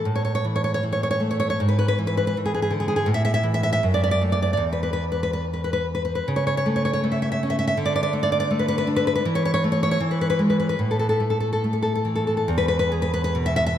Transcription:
0.05 1.56 A2 medium
0.15 0.23 C#5 medium
0.25 0.34 C#5 medium
0.35 0.45 C#5 medium
0.45 0.82 E3 soft
0.56 0.63 C#5 medium
0.64 0.73 C#5 medium
0.74 0.84 C#5 medium
0.83 1.56 E3 soft
0.93 1.02 C#5 medium
1.03 1.09 C#5 medium
1.11 1.21 C#5 medium
1.20 1.59 A3 soft
1.31 1.38 C#5 medium
1.40 1.49 C#5 medium
1.50 1.60 C#5 medium
1.60 3.06 G#2 medium
1.68 1.77 B4 medium
1.79 1.87 B4 medium
1.88 1.98 B4 medium
1.99 2.36 E3 soft
2.07 2.16 B4 medium
2.17 2.26 B4 medium
2.27 2.36 B4 medium
2.37 3.06 E3 soft
2.46 2.53 G#4 medium
2.54 2.61 G#4 medium
2.62 2.72 G#4 medium
2.70 3.08 D3 medium
2.80 2.87 G#4 medium
2.88 2.95 G#4 medium
2.96 3.07 G#4 medium
3.06 3.81 A2 medium
3.14 3.24 E5 medium
3.25 3.33 E5 medium
3.34 3.45 E5 loud
3.43 3.79 E3 medium
3.54 3.62 E5 medium
3.63 3.71 E5 medium
3.73 3.83 E5 medium
3.83 4.57 F#2 medium
3.94 4.02 D5 medium
4.04 4.10 D5 medium
4.11 4.22 D5 medium
4.22 4.59 A3 soft
4.32 4.41 D5 medium
4.42 4.52 D5 medium
4.53 4.64 D5 medium
4.57 6.21 E2 medium
4.73 4.82 B4 medium
4.83 4.92 B4 medium
4.93 5.04 B4 medium
5.12 5.22 B4 medium
5.23 5.32 B4 medium
5.33 5.44 B4 medium
5.53 5.63 B4 medium
5.64 5.72 B4 medium
5.73 5.85 B4 medium
5.95 6.04 B4 medium
6.05 6.14 B4 medium
6.15 6.27 B4 medium
6.28 7.74 C#3 medium
6.36 6.46 C#5 medium
6.47 6.56 C#5 medium
6.57 6.67 C#5 medium
6.66 7.02 A3 soft
6.76 6.84 C#5 medium
6.85 6.92 C#5 medium
6.93 7.04 C#5 medium
7.04 7.74 A3 soft
7.12 7.21 E5 medium
7.22 7.30 E5 medium
7.32 7.41 E5 medium
7.43 7.77 C#4 soft
7.50 7.58 E5 medium
7.59 7.66 E5 medium
7.67 7.77 E5 medium
7.77 9.20 D3 medium
7.86 7.94 D5 medium
7.96 8.02 D5 medium
8.03 8.13 D5 medium
8.13 8.49 A3 medium
8.23 8.31 D5 medium
8.32 8.39 D5 medium
8.40 8.50 D5 medium
8.51 9.20 A3 medium
8.59 8.67 B4 medium
8.68 8.77 B4 medium
8.78 8.87 B4 medium
8.87 9.24 D4 medium
8.96 9.06 B4 medium
9.07 9.14 B4 medium
9.15 9.25 B4 medium
9.25 9.98 E3 medium
9.35 9.44 C#5 medium
9.45 9.53 C#5 loud
9.54 9.63 C#5 loud
9.64 9.97 A3 medium
9.72 9.81 C#5 medium
9.83 9.90 C#5 medium
9.91 10.00 C#5 loud
10.00 10.76 E3 medium
10.11 10.20 B4 medium
10.21 10.29 B4 medium
10.30 10.39 B4 medium
10.39 10.75 G#3 medium
10.50 10.58 B4 medium
10.60 10.68 B4 medium
10.69 10.79 B4 medium
10.79 12.44 A2 medium
10.91 10.98 A4 medium
10.99 11.08 A4 medium
11.09 11.20 A4 medium
11.20 11.63 A3 soft
11.30 11.39 A4 medium
11.40 11.51 A4 medium
11.53 11.63 A4 medium
11.64 12.45 A3 soft
11.73 11.81 A4 soft
11.82 11.94 A4 medium
11.95 12.06 A4 medium
12.05 12.48 E3 soft
12.15 12.26 A4 medium
12.27 12.36 A4 medium
12.37 12.48 A4 medium
12.48 13.78 E2 medium
12.58 12.67 B4 medium
12.68 12.78 B4 medium
12.79 12.92 B4 medium
12.92 13.77 G#4 medium
13.02 13.12 B4 medium
13.14 13.23 B4 medium
13.24 13.36 B4 medium
13.35 13.78 B2 medium
13.46 13.55 E5 medium
13.56 13.65 E5 medium
13.66 13.78 E5 loud

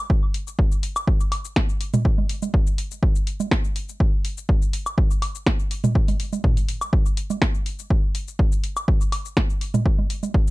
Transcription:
0.10 kick loud
0.34 open hi-hat medium
0.47 shaker medium
0.59 kick loud
0.72 shaker soft
0.83 open hi-hat medium
0.96 high woodblock medium
0.96 shaker medium
1.07 kick loud
1.20 shaker soft
1.32 open hi-hat medium
1.32 high woodblock medium
1.45 shaker medium
1.56 kick loud
1.56 snare loud
1.69 shaker soft
1.81 open hi-hat medium
1.94 mid tom medium
1.94 high conga medium
1.94 shaker medium
2.05 kick loud
2.18 high conga medium
2.29 open hi-hat loud
2.42 high conga medium
2.42 shaker medium
2.54 kick loud
2.67 shaker soft
2.78 open hi-hat loud
2.91 shaker medium
3.03 kick loud
3.16 shaker soft
3.27 open hi-hat loud
3.40 high conga medium
3.40 shaker medium
3.51 kick loud
3.51 snare loud
3.64 shaker soft
3.76 open hi-hat loud
3.89 shaker medium
4.00 kick loud
4.25 open hi-hat loud
4.38 shaker medium
4.49 kick loud
4.62 shaker soft
4.73 open hi-hat loud
4.86 high woodblock medium
4.86 shaker medium
4.98 kick loud
5.11 shaker soft
5.22 open hi-hat loud
5.22 high woodblock medium
5.35 shaker medium
5.46 kick loud
5.46 snare loud
5.60 shaker soft
5.71 open hi-hat loud
5.84 mid tom medium
5.84 high conga medium
5.84 shaker medium
5.95 kick loud
6.08 open hi-hat soft
6.08 high conga medium
6.08 shaker soft
6.20 open hi-hat loud
6.33 high conga medium
6.33 shaker medium
6.44 kick loud
6.44 mid tom medium
6.57 open hi-hat soft
6.57 shaker soft
6.68 open hi-hat loud
6.81 high woodblock medium
6.81 shaker medium
6.93 kick loud
7.06 shaker soft
7.17 open hi-hat medium
7.30 high conga medium
7.30 shaker soft
7.42 kick loud
7.42 snare loud
7.55 shaker soft
7.66 open hi-hat medium
7.79 shaker medium
7.90 kick loud
8.15 open hi-hat loud
8.28 shaker soft
8.39 kick loud
8.52 shaker soft
8.64 open hi-hat medium
8.77 high woodblock medium
8.77 shaker medium
8.88 kick loud
9.01 shaker soft
9.12 open hi-hat medium
9.12 high woodblock medium
9.25 shaker soft
9.37 kick loud
9.37 snare loud
9.50 shaker soft
9.61 open hi-hat loud
9.74 mid tom medium
9.74 high conga medium
9.74 shaker medium
9.86 kick loud
9.99 high conga medium
10.10 open hi-hat medium
10.23 high conga soft
10.23 shaker medium
10.34 kick loud
10.47 shaker soft

